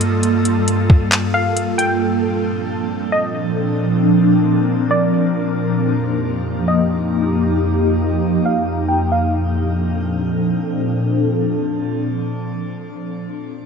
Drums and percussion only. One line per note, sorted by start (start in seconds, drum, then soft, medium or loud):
0.01 closed hi-hat medium
0.23 closed hi-hat medium
0.45 closed hi-hat medium
0.68 closed hi-hat medium
0.90 kick medium
1.12 clap loud
1.12 closed hi-hat medium
1.57 closed hi-hat medium
1.79 closed hi-hat medium